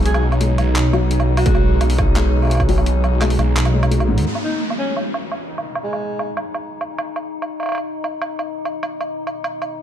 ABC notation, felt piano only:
X:1
M:4/4
L:1/8
Q:1/4=171
K:G#m
V:1 name="Felt piano" clef=bass
G,2 G, z2 F, z2 | G,4 G, z2 F, | z2 G,3 G, G, G,, | z8 |
z8 | z8 | z8 |]